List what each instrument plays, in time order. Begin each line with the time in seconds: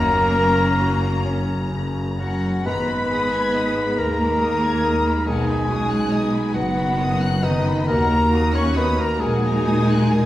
Already playing: double bass section F#1, grand piano F#2, french horn section F#3 C#4, cello section A#3, viola section C#4, clarinet A#4, violin section A#5, flute A#5
0.36 grand piano A#4
0.81 grand piano F#4
1.26 grand piano C#4
1.71 grand piano C#3
2.18 cello section F#3, grand piano C#4, clarinet F#4, flute F#5, violin section F#5
2.65 double bass section G#1, grand piano G#2, french horn section G#3 D#4, viola section G#3, cello section B3, clarinet B4, violin section A#5 B5, flute B5
2.88 violin section B5
3.10 grand piano G#4, violin section D#6
3.35 violin section G#6
3.54 grand piano D#4, violin section D#6
3.77 violin section B5
3.97 double bass section D#2, grand piano A#3, cello section A#3, clarinet A#4, flute A#5, violin section A#5
4.20 violin section B5
4.40 grand piano D#3, violin section D#6
4.63 violin section G#6
4.84 grand piano A#3, violin section D#6
5.06 violin section B5
5.25 grand piano B1, double bass section B1, cello section G#3, french horn section B3, viola section D#4, clarinet G#4, violin section F#5 G#5, flute G#5
5.49 violin section B5
5.69 viola section C#4, grand piano F#4, violin section D#6
5.91 violin section F#6
6.11 viola section B3, grand piano D#4, violin section D#6
6.35 violin section B5
6.54 double bass section F#1, cello section F#3, grand piano B3, clarinet F#4, violin section F#5, flute F#5
6.77 violin section B5
6.98 grand piano F#2, violin section D#6
7.22 violin section F#6
7.42 cello section D#3, grand piano B3, clarinet D#4, violin section D#5 D#6, flute D#5
7.67 violin section B5
7.87 grand piano D#2, double bass section D#2, viola section A#3, french horn section A#3 F#4, cello section A#3, clarinet A#4, violin section F#5 A#5, flute A#5
8.11 violin section A#5
8.33 grand piano F#4, violin section D#6
8.54 cello section C#4, clarinet C#5, flute C#6, violin section C#6 F#6
8.76 cello section B3, grand piano D#4, clarinet B4, flute B5, violin section B5 D#6
8.98 cello section A#3, clarinet A#4, violin section A#5, flute A#5
9.20 double bass section A#1, cello section G#3, grand piano A#3, viola section D#4, clarinet G#4, violin section F#5 G#5, flute G#5
9.44 violin section A#5
9.65 grand piano A#2, violin section D#6
9.90 violin section F#6
10.12 grand piano A#3, violin section D#6